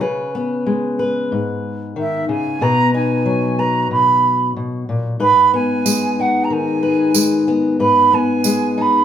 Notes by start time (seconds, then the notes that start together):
0.01 C#3 B4
0.35 B3
0.66 G#3
0.99 B4
1.32 G#2
1.96 D#3 E5
2.29 C#3 G#5
2.61 B2 B4 A#5
2.94 D#4 G#5
3.26 F#3
3.59 B4 A#5
3.91 B2 B5
4.56 B2
4.89 A#2
5.20 G#2 B4 B5
5.54 B3 G#5
5.86 G#3, tambourine
6.19 D#4 F#5
6.44 A#5
6.50 D#3 G#5
6.83 B4
7.15 G#3, tambourine
7.48 B3
7.79 G#2 B4 B5
8.13 B3 G#5
8.44 G#3, tambourine
8.78 D#4 B5